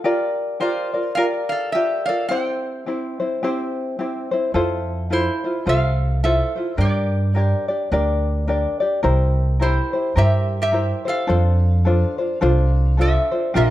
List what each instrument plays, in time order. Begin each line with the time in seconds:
0.04 ukulele F4 G4 A#4 D5
0.60 ukulele F4 G4 A#4 D5, resonator guitar played with a steel bar F4 C5
0.94 ukulele F4 A#4 D5
1.15 ukulele F4 G4 A#4 D5, resonator guitar played with a steel bar A#4 F5
1.49 resonator guitar played with a steel bar A4 F5
1.72 ukulele F4 G4 A#4, resonator guitar played with a steel bar G4 E5
1.77 ukulele D5
2.06 ukulele F4 A#4 D5, resonator guitar played with a steel bar A4 F5
2.29 ukulele C4 E4 G4 C5, resonator guitar played with a steel bar C5 G5
2.86 ukulele C4 E4 G4 C5
3.20 ukulele C4 E4 C5
3.43 ukulele C4 E4 G4 C5
3.99 ukulele C4 E4 G4 C5
4.31 ukulele C4 E4 C5
4.54 upright bass F2, ukulele E4 F4 A4 C5
5.10 ukulele E4 F4 A4 C5, resonator guitar played with a steel bar E4 C5
5.44 ukulele E4 F4 C5
5.66 upright bass C2, ukulele F4 A4 C5, resonator guitar played with a steel bar A4 F5
6.23 ukulele E4 F4 A4 C5, resonator guitar played with a steel bar A4 E5
6.56 ukulele E4 F4 C5
6.77 upright bass G2, ukulele D4 G4 A#4 D5, resonator guitar played with a steel bar D5
6.81 resonator guitar played with a steel bar G4
7.35 ukulele D4 G4 A#4 D5
7.42 resonator guitar played with a steel bar C5
7.68 ukulele D4 G4 D5
7.92 upright bass D2, ukulele D4 G4 A#4 D5
8.47 ukulele D4 G4 A#4 D5
8.80 ukulele D4 G4 D5
9.03 upright bass C2, ukulele E4 G4 A#4 C5
9.60 ukulele E4 G4 A#4 C5, resonator guitar played with a steel bar E4 C5
9.93 ukulele E4 G4 C5
10.16 upright bass G2, ukulele E4 G4 A#4 C5, resonator guitar played with a steel bar G4 E5
10.62 resonator guitar played with a steel bar G4 E5
10.72 ukulele E4 G4 A#4 C5
11.05 ukulele E4 G4 C5, resonator guitar played with a steel bar A4
11.09 resonator guitar played with a steel bar F5
11.27 upright bass F2, ukulele D4 F4 A4 C5
11.85 ukulele D4 F4 A4 C5
12.18 ukulele D4 F4 C5
12.41 upright bass C2, ukulele D4 F4 A4 C5
12.97 ukulele D4 F4 A4 C5, resonator guitar played with a steel bar A4
13.01 resonator guitar played with a steel bar E5
13.31 ukulele D4 F4 C5
13.54 upright bass A#1, ukulele D4 F4 G4 A#4, vibraphone F4, resonator guitar played with a steel bar F4 D5